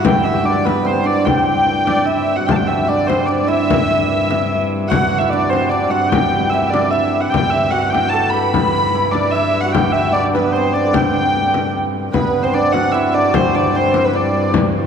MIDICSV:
0, 0, Header, 1, 5, 480
1, 0, Start_track
1, 0, Key_signature, 1, "major"
1, 0, Tempo, 404585
1, 44, Time_signature, 3, 2, 24, 8
1, 8683, Tempo, 400802
1, 17724, End_track
2, 0, Start_track
2, 0, Title_t, "Hurdy-gurdy"
2, 0, Program_c, 0, 110
2, 70, Note_on_c, 0, 79, 100
2, 279, Note_on_c, 0, 76, 89
2, 282, Note_off_c, 0, 79, 0
2, 538, Note_off_c, 0, 76, 0
2, 538, Note_on_c, 0, 74, 88
2, 774, Note_off_c, 0, 74, 0
2, 774, Note_on_c, 0, 71, 88
2, 1021, Note_off_c, 0, 71, 0
2, 1021, Note_on_c, 0, 72, 79
2, 1259, Note_off_c, 0, 72, 0
2, 1259, Note_on_c, 0, 74, 89
2, 1485, Note_off_c, 0, 74, 0
2, 1485, Note_on_c, 0, 79, 98
2, 2201, Note_on_c, 0, 74, 79
2, 2403, Note_off_c, 0, 79, 0
2, 2435, Note_off_c, 0, 74, 0
2, 2435, Note_on_c, 0, 76, 76
2, 2795, Note_on_c, 0, 78, 70
2, 2804, Note_off_c, 0, 76, 0
2, 2924, Note_off_c, 0, 78, 0
2, 2924, Note_on_c, 0, 79, 90
2, 2976, Note_on_c, 0, 81, 75
2, 2988, Note_off_c, 0, 79, 0
2, 3038, Note_on_c, 0, 79, 86
2, 3045, Note_off_c, 0, 81, 0
2, 3163, Note_on_c, 0, 76, 81
2, 3166, Note_off_c, 0, 79, 0
2, 3415, Note_off_c, 0, 76, 0
2, 3415, Note_on_c, 0, 74, 86
2, 3642, Note_on_c, 0, 72, 84
2, 3654, Note_off_c, 0, 74, 0
2, 3864, Note_on_c, 0, 74, 78
2, 3888, Note_off_c, 0, 72, 0
2, 4117, Note_on_c, 0, 76, 103
2, 4119, Note_off_c, 0, 74, 0
2, 5518, Note_off_c, 0, 76, 0
2, 5792, Note_on_c, 0, 78, 100
2, 6144, Note_off_c, 0, 78, 0
2, 6144, Note_on_c, 0, 76, 83
2, 6277, Note_on_c, 0, 74, 93
2, 6278, Note_off_c, 0, 76, 0
2, 6518, Note_on_c, 0, 72, 88
2, 6524, Note_off_c, 0, 74, 0
2, 6749, Note_off_c, 0, 72, 0
2, 6749, Note_on_c, 0, 74, 82
2, 7000, Note_off_c, 0, 74, 0
2, 7000, Note_on_c, 0, 78, 91
2, 7218, Note_on_c, 0, 79, 98
2, 7245, Note_off_c, 0, 78, 0
2, 7703, Note_off_c, 0, 79, 0
2, 7703, Note_on_c, 0, 76, 90
2, 7942, Note_on_c, 0, 74, 88
2, 7955, Note_off_c, 0, 76, 0
2, 8188, Note_on_c, 0, 76, 84
2, 8194, Note_off_c, 0, 74, 0
2, 8547, Note_off_c, 0, 76, 0
2, 8547, Note_on_c, 0, 78, 83
2, 8656, Note_on_c, 0, 79, 101
2, 8676, Note_off_c, 0, 78, 0
2, 8895, Note_off_c, 0, 79, 0
2, 8895, Note_on_c, 0, 76, 89
2, 9146, Note_off_c, 0, 76, 0
2, 9146, Note_on_c, 0, 78, 95
2, 9375, Note_on_c, 0, 79, 103
2, 9398, Note_off_c, 0, 78, 0
2, 9603, Note_on_c, 0, 81, 96
2, 9633, Note_off_c, 0, 79, 0
2, 9857, Note_on_c, 0, 83, 112
2, 9867, Note_off_c, 0, 81, 0
2, 10828, Note_on_c, 0, 74, 93
2, 10837, Note_off_c, 0, 83, 0
2, 11060, Note_on_c, 0, 76, 96
2, 11063, Note_off_c, 0, 74, 0
2, 11421, Note_on_c, 0, 78, 85
2, 11438, Note_off_c, 0, 76, 0
2, 11563, Note_off_c, 0, 78, 0
2, 11563, Note_on_c, 0, 79, 96
2, 11794, Note_off_c, 0, 79, 0
2, 11794, Note_on_c, 0, 76, 87
2, 12041, Note_off_c, 0, 76, 0
2, 12041, Note_on_c, 0, 74, 96
2, 12152, Note_off_c, 0, 74, 0
2, 12296, Note_on_c, 0, 71, 86
2, 12517, Note_on_c, 0, 72, 79
2, 12519, Note_off_c, 0, 71, 0
2, 12769, Note_off_c, 0, 72, 0
2, 12769, Note_on_c, 0, 74, 90
2, 13009, Note_on_c, 0, 79, 101
2, 13013, Note_off_c, 0, 74, 0
2, 13972, Note_off_c, 0, 79, 0
2, 14442, Note_on_c, 0, 71, 92
2, 14802, Note_off_c, 0, 71, 0
2, 14802, Note_on_c, 0, 72, 87
2, 14930, Note_off_c, 0, 72, 0
2, 14930, Note_on_c, 0, 74, 96
2, 15150, Note_on_c, 0, 78, 97
2, 15155, Note_off_c, 0, 74, 0
2, 15387, Note_off_c, 0, 78, 0
2, 15387, Note_on_c, 0, 76, 92
2, 15650, Note_off_c, 0, 76, 0
2, 15650, Note_on_c, 0, 74, 93
2, 15899, Note_off_c, 0, 74, 0
2, 15899, Note_on_c, 0, 72, 95
2, 16141, Note_off_c, 0, 72, 0
2, 16141, Note_on_c, 0, 74, 89
2, 16393, Note_off_c, 0, 74, 0
2, 16393, Note_on_c, 0, 72, 90
2, 16740, Note_off_c, 0, 72, 0
2, 16740, Note_on_c, 0, 71, 75
2, 16870, Note_off_c, 0, 71, 0
2, 16870, Note_on_c, 0, 74, 78
2, 17336, Note_off_c, 0, 74, 0
2, 17724, End_track
3, 0, Start_track
3, 0, Title_t, "Hammered dulcimer"
3, 0, Program_c, 1, 15
3, 0, Note_on_c, 1, 62, 66
3, 0, Note_on_c, 1, 64, 81
3, 0, Note_on_c, 1, 69, 80
3, 0, Note_on_c, 1, 71, 83
3, 47, Note_on_c, 1, 67, 77
3, 293, Note_off_c, 1, 64, 0
3, 297, Note_on_c, 1, 64, 65
3, 515, Note_off_c, 1, 62, 0
3, 519, Note_on_c, 1, 62, 75
3, 763, Note_on_c, 1, 59, 67
3, 1004, Note_on_c, 1, 60, 77
3, 1075, Note_off_c, 1, 59, 0
3, 1075, Note_off_c, 1, 71, 0
3, 1228, Note_off_c, 1, 62, 0
3, 1233, Note_on_c, 1, 62, 70
3, 1474, Note_off_c, 1, 67, 0
3, 1479, Note_on_c, 1, 67, 74
3, 1581, Note_off_c, 1, 69, 0
3, 2214, Note_off_c, 1, 62, 0
3, 2219, Note_on_c, 1, 62, 61
3, 2452, Note_off_c, 1, 64, 0
3, 2457, Note_on_c, 1, 64, 75
3, 2805, Note_on_c, 1, 66, 63
3, 2876, Note_off_c, 1, 67, 0
3, 2940, Note_on_c, 1, 67, 75
3, 3011, Note_off_c, 1, 66, 0
3, 3423, Note_off_c, 1, 62, 0
3, 3428, Note_on_c, 1, 62, 67
3, 3649, Note_off_c, 1, 60, 0
3, 3654, Note_on_c, 1, 60, 63
3, 3891, Note_off_c, 1, 62, 0
3, 3896, Note_on_c, 1, 62, 76
3, 4127, Note_off_c, 1, 64, 0
3, 4131, Note_on_c, 1, 64, 75
3, 5813, Note_on_c, 1, 66, 83
3, 5884, Note_off_c, 1, 67, 0
3, 6176, Note_off_c, 1, 64, 0
3, 6180, Note_on_c, 1, 64, 80
3, 6318, Note_off_c, 1, 62, 0
3, 6323, Note_on_c, 1, 62, 77
3, 6528, Note_off_c, 1, 60, 0
3, 6533, Note_on_c, 1, 60, 72
3, 6774, Note_off_c, 1, 62, 0
3, 6779, Note_on_c, 1, 62, 79
3, 7007, Note_off_c, 1, 66, 0
3, 7012, Note_on_c, 1, 66, 79
3, 7272, Note_on_c, 1, 67, 82
3, 7343, Note_off_c, 1, 66, 0
3, 7751, Note_off_c, 1, 64, 0
3, 7756, Note_on_c, 1, 64, 78
3, 7985, Note_off_c, 1, 62, 0
3, 7990, Note_on_c, 1, 62, 72
3, 8212, Note_off_c, 1, 64, 0
3, 8217, Note_on_c, 1, 64, 82
3, 8678, Note_off_c, 1, 67, 0
3, 8682, Note_on_c, 1, 67, 80
3, 9161, Note_on_c, 1, 66, 78
3, 9233, Note_off_c, 1, 67, 0
3, 9406, Note_on_c, 1, 67, 75
3, 9478, Note_off_c, 1, 66, 0
3, 9660, Note_on_c, 1, 69, 94
3, 9902, Note_on_c, 1, 71, 83
3, 9974, Note_off_c, 1, 60, 0
3, 10623, Note_off_c, 1, 64, 0
3, 10628, Note_on_c, 1, 64, 83
3, 10848, Note_off_c, 1, 62, 0
3, 10853, Note_on_c, 1, 62, 73
3, 11110, Note_off_c, 1, 64, 0
3, 11115, Note_on_c, 1, 64, 85
3, 11461, Note_on_c, 1, 66, 84
3, 11532, Note_off_c, 1, 67, 0
3, 11585, Note_on_c, 1, 67, 84
3, 11657, Note_off_c, 1, 66, 0
3, 12066, Note_off_c, 1, 62, 0
3, 12071, Note_on_c, 1, 62, 81
3, 12323, Note_on_c, 1, 59, 71
3, 12563, Note_on_c, 1, 60, 76
3, 12635, Note_off_c, 1, 59, 0
3, 12635, Note_off_c, 1, 71, 0
3, 12794, Note_off_c, 1, 62, 0
3, 12798, Note_on_c, 1, 62, 75
3, 12926, Note_off_c, 1, 69, 0
3, 12931, Note_on_c, 1, 69, 55
3, 13012, Note_off_c, 1, 67, 0
3, 13017, Note_on_c, 1, 67, 78
3, 14450, Note_on_c, 1, 59, 74
3, 14522, Note_off_c, 1, 60, 0
3, 14813, Note_on_c, 1, 60, 78
3, 14885, Note_off_c, 1, 59, 0
3, 14926, Note_off_c, 1, 62, 0
3, 14930, Note_on_c, 1, 62, 83
3, 15170, Note_on_c, 1, 66, 82
3, 15242, Note_off_c, 1, 67, 0
3, 15285, Note_off_c, 1, 64, 0
3, 15416, Note_on_c, 1, 64, 90
3, 15656, Note_off_c, 1, 62, 0
3, 15660, Note_on_c, 1, 62, 79
3, 15898, Note_off_c, 1, 60, 0
3, 15902, Note_on_c, 1, 60, 84
3, 16139, Note_off_c, 1, 62, 0
3, 16144, Note_on_c, 1, 62, 71
3, 16380, Note_off_c, 1, 60, 0
3, 16385, Note_on_c, 1, 60, 75
3, 16437, Note_off_c, 1, 69, 0
3, 16840, Note_off_c, 1, 62, 0
3, 16844, Note_on_c, 1, 62, 72
3, 17724, Note_off_c, 1, 60, 0
3, 17724, Note_off_c, 1, 62, 0
3, 17724, Note_off_c, 1, 64, 0
3, 17724, Note_off_c, 1, 66, 0
3, 17724, End_track
4, 0, Start_track
4, 0, Title_t, "Viola da gamba"
4, 0, Program_c, 2, 42
4, 0, Note_on_c, 2, 43, 64
4, 2929, Note_off_c, 2, 43, 0
4, 2934, Note_on_c, 2, 43, 70
4, 8702, Note_off_c, 2, 43, 0
4, 8709, Note_on_c, 2, 43, 70
4, 14459, Note_off_c, 2, 43, 0
4, 14466, Note_on_c, 2, 43, 70
4, 17724, Note_off_c, 2, 43, 0
4, 17724, End_track
5, 0, Start_track
5, 0, Title_t, "Frame drum"
5, 56, Note_on_c, 9, 64, 105
5, 175, Note_off_c, 9, 64, 0
5, 298, Note_on_c, 9, 64, 30
5, 416, Note_off_c, 9, 64, 0
5, 790, Note_on_c, 9, 64, 72
5, 909, Note_off_c, 9, 64, 0
5, 1268, Note_on_c, 9, 64, 28
5, 1387, Note_off_c, 9, 64, 0
5, 1503, Note_on_c, 9, 64, 82
5, 1622, Note_off_c, 9, 64, 0
5, 1746, Note_on_c, 9, 64, 26
5, 1864, Note_off_c, 9, 64, 0
5, 1981, Note_on_c, 9, 64, 25
5, 2099, Note_off_c, 9, 64, 0
5, 2221, Note_on_c, 9, 64, 67
5, 2340, Note_off_c, 9, 64, 0
5, 2951, Note_on_c, 9, 64, 87
5, 3069, Note_off_c, 9, 64, 0
5, 3187, Note_on_c, 9, 64, 28
5, 3306, Note_off_c, 9, 64, 0
5, 3674, Note_on_c, 9, 64, 68
5, 3793, Note_off_c, 9, 64, 0
5, 4160, Note_on_c, 9, 64, 28
5, 4279, Note_off_c, 9, 64, 0
5, 4394, Note_on_c, 9, 64, 95
5, 4513, Note_off_c, 9, 64, 0
5, 4635, Note_on_c, 9, 64, 28
5, 4754, Note_off_c, 9, 64, 0
5, 5109, Note_on_c, 9, 64, 68
5, 5228, Note_off_c, 9, 64, 0
5, 5593, Note_on_c, 9, 64, 29
5, 5712, Note_off_c, 9, 64, 0
5, 5830, Note_on_c, 9, 64, 93
5, 5949, Note_off_c, 9, 64, 0
5, 6081, Note_on_c, 9, 64, 29
5, 6199, Note_off_c, 9, 64, 0
5, 6561, Note_on_c, 9, 64, 64
5, 6679, Note_off_c, 9, 64, 0
5, 7036, Note_on_c, 9, 64, 29
5, 7155, Note_off_c, 9, 64, 0
5, 7263, Note_on_c, 9, 64, 91
5, 7382, Note_off_c, 9, 64, 0
5, 7992, Note_on_c, 9, 64, 70
5, 8111, Note_off_c, 9, 64, 0
5, 8219, Note_on_c, 9, 64, 27
5, 8338, Note_off_c, 9, 64, 0
5, 8708, Note_on_c, 9, 64, 88
5, 8828, Note_off_c, 9, 64, 0
5, 8949, Note_on_c, 9, 64, 28
5, 9069, Note_off_c, 9, 64, 0
5, 9434, Note_on_c, 9, 64, 68
5, 9554, Note_off_c, 9, 64, 0
5, 9918, Note_on_c, 9, 64, 28
5, 10038, Note_off_c, 9, 64, 0
5, 10146, Note_on_c, 9, 64, 79
5, 10266, Note_off_c, 9, 64, 0
5, 10387, Note_on_c, 9, 64, 26
5, 10507, Note_off_c, 9, 64, 0
5, 10872, Note_on_c, 9, 64, 62
5, 10991, Note_off_c, 9, 64, 0
5, 11346, Note_on_c, 9, 64, 28
5, 11466, Note_off_c, 9, 64, 0
5, 11589, Note_on_c, 9, 64, 86
5, 11709, Note_off_c, 9, 64, 0
5, 11835, Note_on_c, 9, 64, 26
5, 11955, Note_off_c, 9, 64, 0
5, 12312, Note_on_c, 9, 64, 65
5, 12432, Note_off_c, 9, 64, 0
5, 12792, Note_on_c, 9, 64, 30
5, 12912, Note_off_c, 9, 64, 0
5, 13021, Note_on_c, 9, 64, 91
5, 13141, Note_off_c, 9, 64, 0
5, 13507, Note_on_c, 9, 64, 29
5, 13627, Note_off_c, 9, 64, 0
5, 13742, Note_on_c, 9, 64, 66
5, 13862, Note_off_c, 9, 64, 0
5, 14458, Note_on_c, 9, 64, 84
5, 14578, Note_off_c, 9, 64, 0
5, 15180, Note_on_c, 9, 64, 65
5, 15300, Note_off_c, 9, 64, 0
5, 15656, Note_on_c, 9, 64, 28
5, 15775, Note_off_c, 9, 64, 0
5, 15893, Note_on_c, 9, 64, 90
5, 16012, Note_off_c, 9, 64, 0
5, 16615, Note_on_c, 9, 64, 73
5, 16734, Note_off_c, 9, 64, 0
5, 17101, Note_on_c, 9, 64, 29
5, 17221, Note_off_c, 9, 64, 0
5, 17330, Note_on_c, 9, 64, 95
5, 17449, Note_off_c, 9, 64, 0
5, 17724, End_track
0, 0, End_of_file